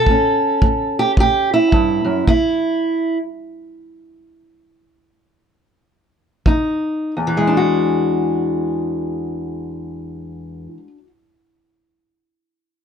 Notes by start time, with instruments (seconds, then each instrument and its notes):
Already playing: steel-string acoustic guitar A4
0.06 steel-string acoustic guitar A2 C#4, kick
0.62 steel-string acoustic guitar A2, kick
0.99 steel-string acoustic guitar G4
1.17 steel-string acoustic guitar A2 G4, kick
1.54 steel-string acoustic guitar E4
1.72 steel-string acoustic guitar G2, kick
2.05 steel-string acoustic guitar F#2
2.27 steel-string acoustic guitar E2 E4, kick
6.46 steel-string acoustic guitar F2 D#4, kick
7.17 steel-string acoustic guitar E2
7.27 steel-string acoustic guitar E3
7.37 steel-string acoustic guitar G#3
7.47 steel-string acoustic guitar D4
7.57 steel-string acoustic guitar F#4